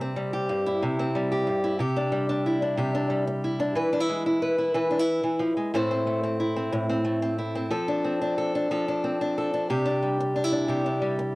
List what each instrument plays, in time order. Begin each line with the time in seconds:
Already playing: steel-string acoustic guitar C3 G3
0.01 steel-string acoustic guitar C4
0.16 steel-string acoustic guitar G3
0.33 steel-string acoustic guitar G4
0.49 steel-string acoustic guitar G2
0.66 steel-string acoustic guitar E4
0.82 steel-string acoustic guitar C3
0.99 steel-string acoustic guitar C4
1.15 steel-string acoustic guitar G3
1.32 steel-string acoustic guitar G4
1.47 steel-string acoustic guitar G2
1.64 steel-string acoustic guitar E4
1.79 steel-string acoustic guitar C3 G4
1.96 steel-string acoustic guitar D4
2.12 steel-string acoustic guitar G3
2.29 steel-string acoustic guitar D4
2.46 steel-string acoustic guitar E4
2.62 steel-string acoustic guitar D4
2.77 steel-string acoustic guitar C3 G4
2.95 steel-string acoustic guitar D4
3.10 steel-string acoustic guitar G3
3.27 muted steel-string acoustic guitar stroke
3.44 steel-string acoustic guitar E4
3.60 steel-string acoustic guitar D4
3.75 steel-string acoustic guitar E3 B4
3.93 steel-string acoustic guitar D4
4.00 steel-string acoustic guitar E4
4.09 steel-string acoustic guitar G#3
4.26 steel-string acoustic guitar E4
4.42 steel-string acoustic guitar B4
4.58 steel-string acoustic guitar E4
4.74 steel-string acoustic guitar E3 B4
4.91 steel-string acoustic guitar D4
4.99 steel-string acoustic guitar E4
5.23 steel-string acoustic guitar E3
5.39 steel-string acoustic guitar F3
5.57 steel-string acoustic guitar G#3
5.74 steel-string acoustic guitar A2 A3 C4 E4 C5
5.91 steel-string acoustic guitar C4
6.07 steel-string acoustic guitar A3
6.23 steel-string acoustic guitar C4
6.40 steel-string acoustic guitar E4
6.56 steel-string acoustic guitar C4
6.72 steel-string acoustic guitar A2, muted steel-string acoustic guitar stroke
6.89 steel-string acoustic guitar C4
7.04 steel-string acoustic guitar A3
7.22 steel-string acoustic guitar C4
7.38 steel-string acoustic guitar E4
7.55 steel-string acoustic guitar C4
7.71 steel-string acoustic guitar F3 A4
7.88 steel-string acoustic guitar D4
8.04 steel-string acoustic guitar C4
8.21 steel-string acoustic guitar D4
8.38 steel-string acoustic guitar A4
8.55 steel-string acoustic guitar D4
8.71 steel-string acoustic guitar F3 A4
8.88 steel-string acoustic guitar D4
9.04 steel-string acoustic guitar C4
9.21 steel-string acoustic guitar D4
9.38 steel-string acoustic guitar A4
9.54 steel-string acoustic guitar D4
9.70 steel-string acoustic guitar C3 G4
9.86 steel-string acoustic guitar D4
10.03 steel-string acoustic guitar G3
10.20 muted steel-string acoustic guitar stroke
10.36 steel-string acoustic guitar D4
10.44 steel-string acoustic guitar E4
10.52 steel-string acoustic guitar D4
10.68 steel-string acoustic guitar C3 G4
10.86 steel-string acoustic guitar D4
11.02 steel-string acoustic guitar G3
11.19 muted steel-string acoustic guitar stroke